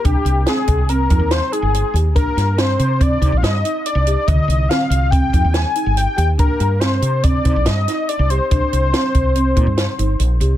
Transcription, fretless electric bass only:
\new Staff \with { instrumentName = "Fretless electric bass" } { \clef bass \time 5/4 \key c \minor \tempo 4 = 142 c,16 r16 c,8 r8 c,4 f,16 ees,8 r8 g,,8 r16 ees,8 | c,16 r16 g,4 c4 c16 bes,,16 g,8 r8. c,8 r16 | c,16 r16 c,8 r8 c,4 f,16 ees,8 r8 g,,8 r16 ees,8 | c,16 r16 g,4 c4 c16 bes,,16 g,8 r8. c,8 r16 |
c,16 r16 c,8 r8 c,4 bes,16 g,8 r16 g,,8 bes,,8 c,8 | }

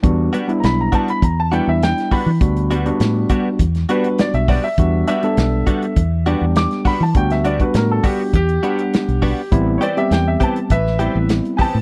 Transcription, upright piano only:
\new Staff \with { instrumentName = "Upright piano" } { \time 4/4 \key e \minor \tempo 4 = 101 r4 <ais'' b''>16 ais''16 a''16 b''16 ais''16 a''16 g''16 e''16 g''8 b''8~ | b''4. r4 b'8 d''16 e''16 d''16 e''16~ | e''8 e''2 r8 d'''8 b''16 a''16 | g''16 e''16 d''16 b'16 ais'16 a'16 g'8 g'2 |
r8 <cis'' d''>16 e''16 g''16 e''16 a''8 <b' e''>4 r8 <gis'' a''>8 | }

